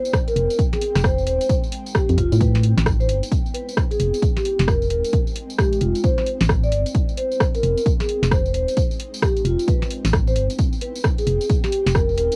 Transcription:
Already playing: B3 C4 E4 C5 G5
0.05 tambourine
0.13 kick, cross-stick, tambourine
0.27 A#4, closed hi-hat, tambourine
0.36 F1 G#3 D#4, open hi-hat
0.50 closed hi-hat, tambourine
0.59 kick, closed hi-hat, tambourine
0.73 G#4, snare, closed hi-hat, tambourine
0.81 open hi-hat
0.95 F1, cross-stick, snare, closed hi-hat, tambourine
1.04 C5, kick, cross-stick, tambourine
1.18 tambourine
1.27 D#1 C5, open hi-hat
1.41 closed hi-hat, tambourine
1.49 kick, closed hi-hat, tambourine
1.64 tambourine
1.72 open hi-hat
1.86 tambourine
1.95 G4, kick, cross-stick, tambourine
2.09 F2, closed hi-hat, tambourine
2.18 F1 F4, kick, open hi-hat
2.32 A2, closed hi-hat, tambourine
2.40 B3 E4 B4, kick, closed hi-hat, tambourine
2.55 snare, tambourine
2.63 open hi-hat
2.77 A1, snare, closed hi-hat, tambourine
2.86 kick, cross-stick, tambourine
3.00 C5, tambourine
3.09 G1, open hi-hat
3.23 closed hi-hat, tambourine
3.31 kick, closed hi-hat, tambourine
3.46 tambourine
3.54 B4, open hi-hat
3.68 tambourine
3.77 kick, cross-stick, tambourine
3.91 G#4, closed hi-hat, tambourine
4.00 F1 G#3 C4 D#4, open hi-hat
4.14 closed hi-hat, tambourine
4.22 kick, closed hi-hat, tambourine
4.36 G4, snare, tambourine
4.45 open hi-hat
4.59 F1, snare, closed hi-hat, tambourine
4.68 A#4, kick, cross-stick, tambourine
4.82 tambourine
4.90 D#1 A#4, open hi-hat
5.05 closed hi-hat, tambourine
5.13 kick, closed hi-hat, tambourine
5.27 tambourine
5.36 open hi-hat
5.50 tambourine
5.59 G4, kick, cross-stick, tambourine
5.73 closed hi-hat, tambourine
5.81 F1 F4, open hi-hat
5.95 closed hi-hat, tambourine
6.04 B3 E4 C5, kick, closed hi-hat, tambourine
6.18 snare, tambourine
6.27 open hi-hat
6.41 A1, snare, closed hi-hat, tambourine
6.49 kick, cross-stick
6.64 D5, tambourine
6.72 G1, open hi-hat
6.86 closed hi-hat, tambourine
6.95 kick, closed hi-hat, tambourine
7.09 tambourine
7.18 C5, open hi-hat
7.32 tambourine
7.40 kick, cross-stick, tambourine
7.55 A#4, closed hi-hat, tambourine
7.63 F1 G#3 D#4 G5, open hi-hat
7.78 closed hi-hat, tambourine
7.86 kick, closed hi-hat, tambourine
8.00 G#4, snare, tambourine
8.09 open hi-hat
8.23 F1, snare, closed hi-hat, tambourine
8.31 C5, kick, cross-stick, tambourine
8.46 tambourine
8.54 D#1 C5, open hi-hat
8.68 closed hi-hat, tambourine
8.77 kick, closed hi-hat, tambourine
8.91 tambourine
9.00 open hi-hat
9.14 tambourine
9.22 G4, kick, cross-stick, tambourine
9.37 closed hi-hat, tambourine
9.45 F1 F4, open hi-hat
9.59 closed hi-hat, tambourine
9.68 B3 E4 B4, kick, closed hi-hat, tambourine
9.82 snare, tambourine
9.91 open hi-hat
10.05 A1, snare, closed hi-hat, tambourine
10.13 kick, cross-stick
10.27 C5, tambourine
10.36 G1, open hi-hat
10.50 closed hi-hat, tambourine
10.58 kick, closed hi-hat, tambourine
10.73 tambourine
10.81 B4, open hi-hat
10.95 tambourine
11.04 kick, cross-stick, tambourine
11.18 G#4, closed hi-hat, tambourine
11.27 F1 G#3 D#4, open hi-hat
11.41 closed hi-hat, tambourine
11.49 kick, closed hi-hat, tambourine
11.64 G4, snare, tambourine
11.72 open hi-hat
11.86 F1, snare, closed hi-hat, tambourine
11.95 A#4, kick, cross-stick, tambourine
12.09 tambourine
12.18 D#1 A#4, open hi-hat
12.32 closed hi-hat, tambourine

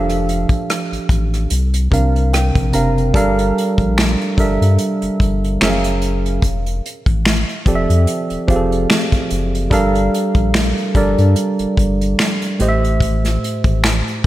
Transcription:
Already playing: F1 F3 D4 G4 A4 F5
0.09 cross-stick, closed hi-hat
0.29 closed hi-hat
0.49 A1, kick, closed hi-hat
0.70 cross-stick, closed hi-hat
0.92 A1, closed hi-hat
1.09 A1, kick, closed hi-hat
1.34 cross-stick, closed hi-hat
1.50 C2, closed hi-hat
1.74 closed hi-hat
1.91 C2 C3 C4 D4 A#4 F5, kick, closed hi-hat
2.16 closed hi-hat
2.33 G5, cross-stick, closed hi-hat
2.55 A#1, kick, closed hi-hat
2.72 F#1 C3 C4 D4 A#4 F5 A#5, closed hi-hat
2.98 closed hi-hat
3.14 G1 G3 D4 A4 A#4 F5, kick, closed hi-hat
3.39 closed hi-hat
3.58 closed hi-hat
3.78 A#1, kick, closed hi-hat
3.98 finger snap, snare, closed hi-hat
4.21 closed hi-hat
4.37 G1 G3 D4 A4 A#4 E5, kick, closed hi-hat
4.61 G2, closed hi-hat
4.78 closed hi-hat
5.02 G1, closed hi-hat
5.20 G1, kick, closed hi-hat
5.44 closed hi-hat
5.61 F#1 F#3 C#4 G#4 A#4 E5, finger snap, snare, closed hi-hat
5.70 F5
5.84 closed hi-hat
6.02 closed hi-hat
6.26 closed hi-hat
6.42 F1, kick, closed hi-hat
6.66 closed hi-hat
6.86 closed hi-hat
7.06 A1, kick, closed hi-hat
7.25 finger snap, snare, closed hi-hat
7.49 closed hi-hat
7.66 F1 F3 C4 G4 A4 D5, kick, closed hi-hat
7.75 E5
7.90 F2, closed hi-hat
8.07 closed hi-hat
8.30 F1, closed hi-hat
8.47 F1 F3 C4 G4 G#4 F5, kick, closed hi-hat
8.56 A4
8.72 closed hi-hat
8.90 finger snap, snare, closed hi-hat
9.12 kick, closed hi-hat
9.31 F#1, closed hi-hat
9.55 closed hi-hat
9.70 G1 G3 D4 A4 A#4 F5, kick, closed hi-hat
9.95 closed hi-hat
10.14 closed hi-hat
10.35 A#1, kick, closed hi-hat
10.54 finger snap, snare, closed hi-hat
10.78 closed hi-hat
10.94 G1 G3 D4 A4 A#4 D5, kick, closed hi-hat
11.18 G2, closed hi-hat
11.36 closed hi-hat
11.59 G1, closed hi-hat
11.77 G1, kick, closed hi-hat
12.01 closed hi-hat
12.19 finger snap, snare, closed hi-hat
12.42 closed hi-hat
12.59 A1 A2 A3 G4 C5 D#5, closed hi-hat
12.69 E5
12.84 closed hi-hat
13.01 kick, closed hi-hat
13.25 snare, closed hi-hat
13.44 closed hi-hat
13.64 A1, kick, closed hi-hat
13.84 finger snap, snare, closed hi-hat
14.08 closed hi-hat

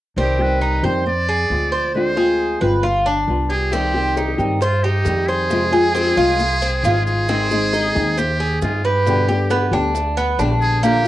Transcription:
0.16 C2 C3 D#3 G3 C4 G4
0.39 D#3 G3 C4 G4 B4
0.61 D#4
0.83 F2 D#3 G3 C4 G4 C5
1.06 D5, muted nylon-string guitar stroke
1.29 G#4
1.49 D2 F3 G#3 C4 F4
1.72 C5
1.94 D3 G#3 C4 F4 C5
2.17 G#3 C4 F4 G#4
2.61 G1 G#3 C4 F4 B4
2.83 F4, muted nylon-string guitar stroke
3.06 D4
3.27 C2 G3 B3 F4
3.50 G4 G#4
3.72 C3 D#3 G3 C4 G4, high bongo, maracas
3.94 D#3 G3 C4 G4, high bongo
4.17 D#4, high bongo, maracas
4.38 G2 D#3 G3 C4 G4, maracas
4.61 F4 C5, muted nylon-string guitar stroke, high bongo, maracas
4.83 D#4 G4, high bongo
5.05 F2 D#3 G3 C4 G4, high bongo, low bongo, maracas
5.28 G#4 C5, high bongo, maracas
5.50 C3 F3 G#3 C4 F4, high bongo, maracas
5.72 F3 G#3 C4 F4 G#4, high bongo
5.95 C4, high bongo, maracas
6.17 C2 F3 G#3 C4 F4, maracas
6.39 muted nylon-string guitar stroke, high bongo, maracas
6.62 C4, high bongo, maracas
6.83 G#1 F3 G#3 C4 F4, high bongo, low bongo, maracas
7.06 G#4, maracas
7.28 D#3 G#3 C4 D#4 G#4, high bongo, maracas
7.51 G#3 C4 D#4 G#4, high bongo, maracas
7.73 D#4, high bongo, maracas
7.95 D#2 G#3 C4 D#4 G#4, maracas
8.17 G4 C5, muted nylon-string guitar stroke, high bongo, maracas
8.40 G#4, high bongo
8.62 G2 C4 D#4 F4 G#4, high bongo, low bongo, maracas
8.84 G4 B4, high bongo, maracas
9.06 B2 D3 G3 B3 G4, high bongo, maracas
9.28 D3 G3 B3 G4, high bongo
9.50 B3, high bongo, maracas
9.72 D2 D3 G3 B3 D4 G4, high bongo, maracas
9.95 muted nylon-string guitar stroke, high bongo, maracas
10.17 B3, high bongo, maracas
10.38 A#1 D3 G3 B3 D4 G4, high bongo, low bongo, maracas
10.62 G#4, maracas
10.83 D3 A#3 D4 F4 G4, high bongo, maracas
11.04 F4

